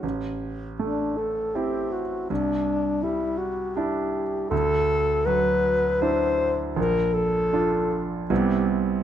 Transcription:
X:1
M:3/4
L:1/8
Q:1/4=80
K:Clyd
V:1 name="Alto saxophone"
z2 D A G F | D2 E F G2 | A2 B2 c2 | _B A2 z G z |]
V:2 name="Grand piano"
A,,,2 A,2 [CE]2 | C,,2 G,2 [DE]2 | D,,2 F,2 [DE]2 | _B,,,2 [D=F]2 [C,,G,=B,CE]2 |]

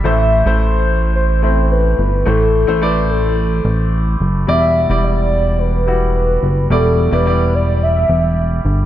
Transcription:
X:1
M:4/4
L:1/16
Q:1/4=108
K:Em
V:1 name="Soft synth lead"
e4 c4 c2 c2 B4 | A4 B2 A6 z4 | e4 d4 B4 B4 | A3 B3 d2 e6 z2 |]
V:2 name="Grand piano"
[A,Ec]3 [A,Ec]6- [A,Ec] [A,CE]6 | [A,Ec]3 [A,Ec] [A,Ed]6- [A,Ed] z4 z | [G,Ed]3 [G,Ed]6- [G,Ed] [G,EF]6 | [G,Ed]3 [G,Ed] [G,Ed]6- [G,Ed] z4 z |]
V:3 name="Grand piano" clef=bass
[A,,E,]6 z8 z2 | [A,,E,]6 z8 z2 | B,,6 z8 z2 | B,,6 z8 z2 |]
V:4 name="Analog synth bass" clef=bass
A,,,3 A,,,8- A,,,3 G,,,2 | A,,,3 A,,,6- A,,, A,,,4 F,,,2 | E,,,3 E,,,8- E,,,3 F,,,2 | E,,,3 E,,,6- E,,, E,,,4 G,,,2 |]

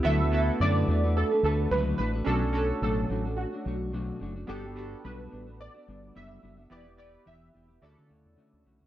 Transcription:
X:1
M:4/4
L:1/16
Q:"Swing 16ths" 1/4=108
K:D
V:1 name="Synth keys"
e4 d4 A2 A2 B2 B2 | A4 A4 F6 z2 | G4 B4 d4 e4 | d2 d2 e4 d6 z2 |]
V:2 name="Synth keys"
[B,EFA]2 [B,EFA]6 z8 | [CDFA]2 [CDFA]6 z8 | [B,DFA]2 [B,DFA]6 z8 | [B,EGB]2 [B,EGB]6 [C,EFA]6 z2 |]
V:3 name="Clean electric guitar"
[D,F,A,DFB] [A,DFB]3 [D,F,A,DFB]2 [A,DFB] [A,DFB]2 [A,DFB] [A,DFB]2 [D,F,A,DFB]2 [A,DFB] [A,DFB] | [B,,F,A,DF] [A,DF]3 [B,,F,A,DF]2 [F,A,DF] [A,DF]2 [A,DF] [F,A,DF]2 [B,,F,A,DF]2 [F,A,DF] [A,DF] | [G,B,DF] [B,D]3 [G,B,DF]2 [G,B,DF] [B,DF]2 [B,DF] [G,B,DF]2 [G,B,DF]2 [G,B,DF] [B,DF] | [E,B,EG] [B,EG]3 [E,B,EG]2 [E,B,EG] [B,EG] [D,A,CF] [CF] [D,A,CF]2 [D,A,CF]2 [D,A,CF] [A,CF] |]
V:4 name="Fingered electric bass" clef=bass
D,,4 F,,2 E,,3 z D,,2 C,,2 A,,,2 | B,,,4 A,,,2 A,,,3 z B,,,4 F,,,2 | G,,,4 B,,,2 A,,,3 z G,,,2 F,,,2 F,,,2 | E,,,4 E,,,2 E,,,2 D,, D, D,, E,, z D,, B,,, C,, |]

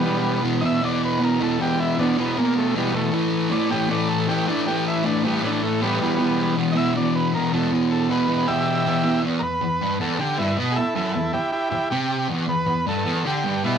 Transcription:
X:1
M:4/4
L:1/8
Q:1/4=157
K:Em
V:1 name="Transistor combo organ"
[G,B,]2 z [^de] =d B ^A =A | G E D B, ^A, =A, G, A, | z2 d G d A G D | G E D G, D A, [G,B,]2- |
[G,B,]2 z [^de] =d B ^A =A | z A B2 [Ge]4 | z [^AB]3 =A G E z | [E^GA] [EA] [EA] [E=G] [EG] [EG] G2 |
z B2 A2 G2 [G,E] |]
V:2 name="Distorted electric guitar" clef=bass
[E,,B,,E,]2 [E,,B,,E,] [E,,B,,E,] [E,,B,,E,]2 [E,,B,,E,] [E,,B,,E,] | [E,,B,,E,]2 [E,,B,,E,] [E,,B,,E,] [E,,B,,E,]2 [E,,B,,E,] [E,,B,,E,] | [A,,E,A,]2 [A,,E,A,] [A,,E,A,] [A,,E,A,]2 [A,,E,A,] [A,,E,A,] | [A,,E,A,]2 [A,,E,A,] [A,,E,A,] [A,,E,A,]2 [A,,E,A,] [E,,B,,E,] |
[E,,B,,E,]2 [E,,B,,E,] [E,,B,,E,] [E,,B,,E,]2 [E,,B,,E,] [E,,B,,E,] | [E,,B,,E,]2 [E,,B,,E,] [E,,B,,E,] [E,,B,,E,]2 [E,,B,,E,] [E,,B,,E,] | E,, E,, E,, G,, E,, D, G,, B,, | z F,, E,, z3 C,2 |
E,, E,, E,, G,, E,, D, G,, B,, |]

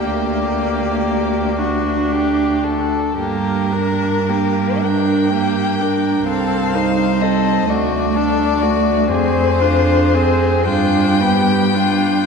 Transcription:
X:1
M:6/8
L:1/8
Q:3/8=39
K:Gm
V:1 name="Violin"
d4- d z | B3 g3 | f2 e d3 | [K:Gphr] c3 g3 |]
V:2 name="Violin"
G3 ^F G A | G B G B G B | A c A ^F A F | [K:Gphr] A F A F G F |]
V:3 name="Viola"
B,3 D3 | B, D B, D B, D | C E C A, D A, | [K:Gphr] C D C D =B, D |]
V:4 name="Cello" clef=bass
D,,6 | G,,6 | C,,3 D,,3 | [K:Gphr] F,,3 G,,3 |]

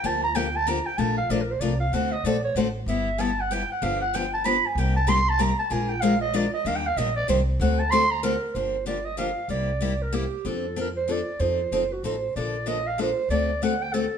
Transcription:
X:1
M:3/4
L:1/8
Q:"Swing" 1/4=190
K:Gm
V:1 name="Clarinet"
a b g a b g | a f (3d B c d f | ^f e d ^c =c z | =e2 a ^f g f |
f ^f g a =b _a | g a c' a b a | _a g f e d e | (3f g f e d c z |
^f a c' b B2 | c2 d e f2 | d3 B G2 | A2 B c d2 |
c3 _G c2 | d2 e f c2 | d2 ^f g A2 |]
V:2 name="Steel-string acoustic guitar"
[D,F,B,DG] z [D,F,B,DG] z [D,F,B,DG] z | [F,A,DFB] z [F,A,DFB] z [F,A,DFB] z | [D,A,C^FA] z [D,A,CFA] z [D,A,CFA] z | [G,=B,=EG] z [G,B,EG] z [G,B,EG] z |
[D,F,=B,DG] z [D,F,B,DG] z [D,F,B,DG] z | [C,G,B,EG] z [C,G,B,EG] z [C,G,B,EG] z | [F,_A,DFB] z [F,A,DFB] z [F,A,DFB] z | [E,G,B,DG] z [E,G,B,DG] z [E,G,B,DG] z |
[D,A,C^FA] z [D,A,CFA] z [D,A,CFA] z | [D,F,B,DG] z [D,F,B,DG] z [D,F,B,DG] z | [C,G,B,=EG] z [C,G,B,EG] z [C,G,B,EG] z | [F,CDA] z [F,CDA] z [F,CDA] z |
[F,CEA] z [F,CEA] z [F,CEA] z | [D,F,B,DA] z [D,F,B,DA] z [D,F,B,DA] z | [D,A,C^FA] z [D,A,CFA] z [D,A,CFA] z |]
V:3 name="Upright bass" clef=bass
D,,6 | B,,,2 B,,,2 C,,2 | D,,2 B,,,2 A,,,2 | G,,,6 |
G,,,6 | C,,6 | B,,,6 | E,,2 B,,,2 C,,2 |
D,,6 | G,,,6 | C,,6 | F,,6 |
F,,2 _G,,,2 A,,,2 | B,,,6 | D,,6 |]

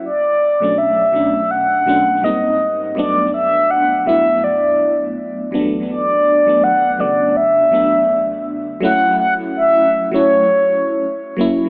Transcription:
X:1
M:4/4
L:1/16
Q:"Swing 16ths" 1/4=82
K:F#phr
V:1 name="Soft synth lead"
d4 e4 f4 ^d3 z | d2 e2 f2 e2 d4 z4 | d4 f2 d2 e6 z2 | f2 f2 e3 c6- c z2 |]
V:2 name="FM electric piano"
z3 [B,,F,A,CD]2 z [B,,F,A,CD]3 z [B,,F,A,CD]2 [^G,,=G,^A,^B,^D]3 z | [G,,F,A,B,D]4 z2 [G,,F,A,B,E]6 z2 [E,,F,G,A,B,D]2- | [E,,F,G,A,B,D]2 z [E,,F,A,B,D]2 z [E,,C,F,A,B,]3 z [E,,F,A,B,D]4 z2 | [F,A,CE]4- [F,A,CE] z2 [F,A,CE]4- [F,A,CE] z2 [F,^A,CE] z |]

